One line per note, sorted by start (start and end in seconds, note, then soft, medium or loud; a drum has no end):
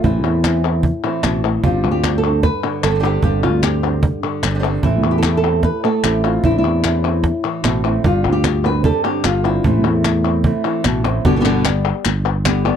0.04 0.24 A1 medium
0.04 1.23 A2 medium
0.04 0.23 E3 medium
0.04 0.24 A3 medium
0.04 0.23 C4 medium
0.04 1.24 E4 medium
0.04 0.22 E4 medium
0.04 cajon bass medium
0.24 0.90 E2 medium
0.24 0.43 A3 soft
0.24 0.44 C4 soft
0.24 0.43 E4 soft
0.24 cajon slap soft
0.44 0.63 E3 soft
0.44 0.63 A3 soft
0.44 0.64 C4 soft
0.44 0.63 E4 soft
0.44 cajon slap medium
0.44 clap medium
0.64 0.83 A3 soft
0.64 0.83 C4 soft
0.64 0.83 E4 soft
0.83 muted nylon-string guitar stroke soft
0.83 cajon bass medium
1.04 1.62 E3 medium
1.04 1.64 A3 soft
1.04 1.65 C4 soft
1.04 1.63 E4 soft
1.23 1.57 A1 medium
1.23 1.44 B2 medium
1.23 cajon slap medium
1.23 clap medium
1.44 1.64 A2 medium
1.64 1.85 G1 medium
1.64 3.21 G2 medium
1.64 2.03 C3 medium
1.64 2.03 G3 medium
1.64 2.04 C4 medium
1.64 2.03 D4 medium
1.64 2.31 F4 medium
1.64 2.02 G4 medium
1.64 cajon bass medium
1.84 2.49 D2 medium
1.84 cajon slap soft
1.91 2.17 G4 medium
2.03 2.24 C4 soft
2.03 2.23 D4 soft
2.03 2.23 G4 soft
2.03 cajon slap medium
2.03 clap medium
2.18 2.43 A4 medium
2.24 2.43 C4 soft
2.24 2.43 D4 soft
2.24 2.43 G4 soft
2.43 2.83 B4 loud
2.43 muted nylon-string guitar stroke soft
2.43 cajon bass medium
2.43 cajon slap soft
2.64 4.22 D3 medium
2.83 3.17 G1 medium
2.83 2.89 G3 soft
2.83 2.90 C4 soft
2.83 2.90 D4 soft
2.83 2.91 G4 soft
2.83 3.03 A4 medium
2.83 cajon slap medium
2.83 clap medium
2.90 2.94 G3 soft
2.90 2.94 C4 soft
2.90 2.95 D4 soft
2.90 2.95 G4 soft
2.95 2.98 G3 soft
2.95 2.99 C4 soft
2.95 2.99 D4 medium
2.95 2.99 G4 medium
3.00 3.03 G3 soft
3.00 3.03 C4 medium
3.00 3.04 D4 medium
3.00 3.04 G4 medium
3.00 3.22 G4 medium
3.04 3.22 C3 medium
3.04 3.23 G3 medium
3.04 3.23 C4 medium
3.04 3.24 D4 medium
3.04 3.24 G4 medium
3.23 3.45 G1 medium
3.23 4.81 G2 medium
3.23 3.63 C3 medium
3.23 3.63 G3 medium
3.23 3.63 C4 medium
3.23 3.64 D4 medium
3.23 3.43 G4 medium
3.23 3.62 G4 medium
3.23 cajon bass medium
3.43 4.09 D2 medium
3.43 3.63 F4 medium
3.63 3.84 C4 soft
3.63 3.84 D4 soft
3.63 4.44 G4 medium
3.63 3.82 G4 soft
3.63 cajon slap medium
3.63 clap medium
3.83 4.03 C4 soft
3.83 4.03 D4 soft
3.83 4.03 G4 soft
3.83 cajon slap soft
4.03 muted nylon-string guitar stroke soft
4.03 cajon bass medium
4.23 4.83 D3 medium
4.43 4.76 G1 medium
4.43 4.49 G3 soft
4.43 4.49 C4 soft
4.43 4.50 D4 soft
4.43 4.50 G4 soft
4.43 cajon slap medium
4.43 clap medium
4.50 4.53 G3 soft
4.50 4.54 C4 soft
4.50 4.54 D4 soft
4.50 4.55 G4 soft
4.55 4.58 G3 soft
4.55 4.58 C4 medium
4.55 4.59 D4 soft
4.55 4.59 G4 soft
4.59 4.63 G3 medium
4.59 4.63 C4 medium
4.59 4.63 D4 medium
4.59 4.64 G4 medium
4.63 4.83 C3 medium
4.63 4.83 G3 medium
4.63 5.11 C4 soft
4.63 4.83 C4 medium
4.63 4.83 D4 medium
4.63 4.83 G4 medium
4.83 5.04 A1 medium
4.83 6.43 A2 medium
4.83 5.23 E3 medium
4.83 5.23 A3 medium
4.83 5.24 C4 medium
4.83 5.17 E4 medium
4.83 5.24 E4 medium
4.83 cajon bass medium
5.04 5.70 E2 medium
5.11 5.24 G4 medium
5.18 5.36 A4 medium
5.23 5.43 E3 soft
5.23 5.43 A3 soft
5.23 5.43 C4 soft
5.23 5.42 E4 soft
5.23 5.78 G4 medium
5.23 cajon slap medium
5.23 clap medium
5.37 5.64 A4 medium
5.43 5.63 A3 soft
5.43 5.63 C4 soft
5.43 5.63 E4 soft
5.63 5.84 B4 medium
5.63 muted nylon-string guitar stroke soft
5.63 cajon bass medium
5.63 cajon slap soft
5.84 6.42 A3 medium
5.84 6.44 A4 medium
6.03 6.37 A1 medium
6.03 6.24 A3 soft
6.03 6.23 C4 soft
6.03 6.23 E4 soft
6.03 6.24 G4 medium
6.03 cajon slap medium
6.03 clap medium
6.24 6.44 A3 soft
6.24 6.44 C4 soft
6.24 6.43 E4 soft
6.24 6.44 F4 medium
6.44 6.64 A1 medium
6.44 7.64 A2 medium
6.44 6.83 E3 medium
6.44 6.84 A3 medium
6.44 6.84 C4 medium
6.44 6.57 E4 medium
6.44 6.84 E4 medium
6.44 cajon bass medium
6.51 6.98 D4 medium
6.58 7.65 E4 medium
6.64 7.30 E2 medium
6.64 cajon slap soft
6.84 7.03 E3 soft
6.84 7.04 A3 soft
6.84 7.04 C4 soft
6.84 7.03 E4 soft
6.84 cajon slap medium
6.84 clap medium
7.04 7.24 A3 soft
7.04 7.24 C4 soft
7.04 7.23 E4 soft
7.04 cajon slap soft
7.24 muted nylon-string guitar stroke soft
7.24 cajon bass medium
7.24 cajon slap soft
7.44 8.02 E3 medium
7.64 7.97 A1 medium
7.64 7.84 B2 medium
7.64 7.85 A3 soft
7.64 7.84 C4 soft
7.64 7.83 E4 soft
7.64 cajon slap medium
7.64 clap medium
7.85 8.05 A2 medium
7.85 8.05 A3 soft
7.85 8.04 C4 soft
7.85 8.04 E4 soft
8.04 8.27 G1 medium
8.04 9.63 G2 medium
8.04 8.24 C3 medium
8.04 8.24 G3 medium
8.04 8.24 C4 medium
8.04 8.24 D4 medium
8.04 8.72 F4 loud
8.04 8.23 G4 medium
8.04 cajon bass medium
8.24 8.91 D2 medium
8.24 8.44 C4 soft
8.24 8.44 D4 soft
8.24 8.44 G4 soft
8.24 cajon slap soft
8.32 8.65 G4 medium
8.44 muted nylon-string guitar stroke soft
8.44 cajon slap medium
8.44 clap medium
8.64 8.85 C4 soft
8.64 8.84 D4 soft
8.64 8.84 G4 soft
8.64 8.84 B4 medium
8.64 cajon slap soft
8.84 9.04 C3 medium
8.84 9.04 G3 medium
8.84 9.05 C4 medium
8.84 9.04 D4 medium
8.84 9.03 G4 medium
8.84 9.04 A4 loud
8.84 cajon bass medium
9.04 9.65 D3 medium
9.04 9.24 C4 soft
9.04 9.24 D4 soft
9.04 9.24 G4 soft
9.04 9.45 G4 medium
9.24 9.58 G1 medium
9.24 9.65 F4 medium
9.24 muted nylon-string guitar stroke medium
9.24 cajon slap medium
9.24 clap medium
9.45 9.65 C4 soft
9.45 9.65 D4 soft
9.45 11.25 E4 medium
9.45 9.64 G4 soft
9.64 9.85 A1 medium
9.64 10.85 A2 medium
9.64 9.84 E3 medium
9.64 9.84 A3 medium
9.64 11.23 A3 soft
9.64 9.84 C4 medium
9.64 11.23 C4 soft
9.64 9.84 E4 medium
9.64 cajon bass medium
9.84 10.51 E2 medium
9.84 10.04 A3 soft
9.84 10.05 C4 soft
9.84 10.04 E4 soft
9.84 cajon slap soft
10.04 muted nylon-string guitar stroke soft
10.04 cajon slap medium
10.04 clap medium
10.24 10.44 A3 soft
10.24 10.45 C4 soft
10.24 10.44 E4 soft
10.44 10.64 E3 medium
10.44 10.64 A3 medium
10.44 10.64 C4 medium
10.44 10.63 E4 medium
10.44 cajon bass medium
10.64 11.23 E3 medium
10.64 10.84 A3 soft
10.64 10.85 C4 soft
10.64 10.84 E4 soft
10.84 11.18 A1 medium
10.84 11.04 B2 medium
10.84 muted nylon-string guitar stroke soft
10.84 cajon slap medium
10.84 clap medium
11.05 11.24 A2 medium
11.05 11.25 A3 soft
11.05 11.25 C4 soft
11.05 11.24 E4 soft
11.05 cajon slap medium
11.25 11.91 G1 medium
11.25 11.44 B2 medium
11.25 11.35 D3 medium
11.25 11.35 G3 medium
11.25 11.36 B3 medium
11.25 11.36 G4 loud
11.25 cajon bass loud
11.36 11.39 D3 medium
11.36 11.40 G3 medium
11.36 11.40 B3 medium
11.36 11.40 G4 medium
11.40 11.44 D3 medium
11.40 11.45 G3 medium
11.40 11.45 B3 medium
11.40 11.45 G4 medium
11.45 11.64 B2 medium
11.45 11.64 D3 medium
11.45 11.65 G3 medium
11.45 11.65 B3 medium
11.45 11.64 G4 medium
11.45 clap medium
11.65 12.05 G3 medium
11.65 12.05 B3 soft
11.65 12.04 G4 medium
11.65 cajon slap loud
11.65 clap medium
12.05 12.71 G1 medium
12.05 muted nylon-string guitar stroke medium
12.05 clap medium
12.45 12.64 D3 medium
12.45 12.65 G3 medium
12.45 12.65 B3 medium
12.45 12.64 G4 medium
12.45 cajon slap loud
12.45 clap medium
12.65 12.76 G3 medium
12.65 12.76 B3 medium
12.65 12.76 G4 medium